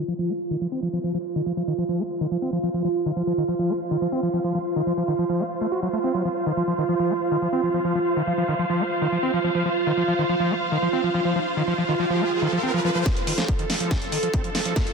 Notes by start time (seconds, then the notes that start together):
Already playing: F4, downlifter
0.08 F3
0.12 F5
0.19 F3 C5
0.29 C4
0.51 D#3
0.61 F3
0.72 C4
0.83 F3
0.93 F3
1.04 F3
1.14 F3
1.36 D#3
1.46 F3
1.57 F3
1.68 D#3
1.78 F3
1.89 F3
1.99 C4
2.21 D#3
2.31 F3
2.42 C4
2.53 F3
2.63 F3
2.74 F3
2.85 F3
3.06 D#3
3.16 F3
3.27 F3
3.38 D#3
3.48 F3
3.59 F3
3.70 C4
3.91 D#3
4.02 F3
4.12 C4
4.23 F3
4.33 F3
4.44 F3
4.55 F3
4.76 D#3
4.87 F3
4.97 F3
5.08 D#3
5.19 F3
5.29 F3
5.40 C4
5.61 A3
5.72 F#4
5.83 F#3
5.93 A3
6.04 C4
6.14 F#3
6.25 F3
6.46 D#3
6.57 F3
6.68 F3
6.78 D#3
6.89 F3
7.00 F3
7.10 C4
7.31 D#3
7.42 F3
7.53 C4
7.63 F3
7.74 F3
7.85 F3
7.95 F3
8.17 D#3
8.27 F3
8.38 F3
8.48 D#3
8.59 F3
8.70 F3
8.80 C4
9.02 D#3
9.12 F3
9.23 C4
9.34 F3
9.44 F3
9.55 F3
9.65 F3, riser
9.87 D#3
9.97 F3
10.08 F3
10.19 D#3
10.29 F3
10.40 F3
10.51 C4
10.72 D#3
10.82 F3
10.93 C4
11.04 F3
11.14 F3
11.25 F3
11.36 F3
11.57 D#3
11.68 F3
11.78 F3
11.89 D#3
11.99 F3
12.10 F3
12.21 C4
12.42 D#3
12.53 F3
12.63 C4
12.74 F3
12.85 F3
12.95 F3
13.06 F3 A4, kick, snare, closed hi-hat, riser
13.17 closed hi-hat
13.27 D#3, open hi-hat
13.38 F3, snare, closed hi-hat
13.48 F3, kick, closed hi-hat
13.59 D#3, closed hi-hat
13.70 F3, snare, open hi-hat
13.80 F3, closed hi-hat
13.91 C4, kick, snare, closed hi-hat
14.02 closed hi-hat
14.12 D#3, open hi-hat
14.23 F3, closed hi-hat
14.34 C4, kick, closed hi-hat
14.44 F3, closed hi-hat
14.55 F3, snare, open hi-hat
14.65 F3, closed hi-hat
14.76 F3, kick, snare, closed hi-hat
14.87 closed hi-hat